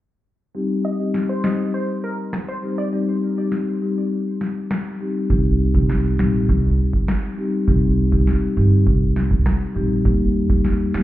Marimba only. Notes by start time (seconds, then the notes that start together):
0.55 G3 C4 D#4 G4
0.99 G3 C4 D#4 G4
1.44 G3 C4 D#4 G4
2.63 G3 C4 D#4 G4
2.92 G3 C4 D#4 G4
3.37 G3 C4 D#4 G4
3.81 G3 C4 D#4 G4
5.00 G3 C4 D#4 G4
5.30 G3 C4 D#4 G4
5.74 G3 C4 D#4 G4
6.19 G3 C4 D#4 G4
7.38 G3 C4 D#4 G4
7.67 G3 C4 D#4 G4
8.12 G3 C4 D#4 G4
8.57 G3 C4 D#4 G4
9.75 G3 C4 D#4 G4
10.05 G3 A#3 D#4 G4
10.49 G3 A#3 D#4 G4
10.94 G3 A#3 D#4 G4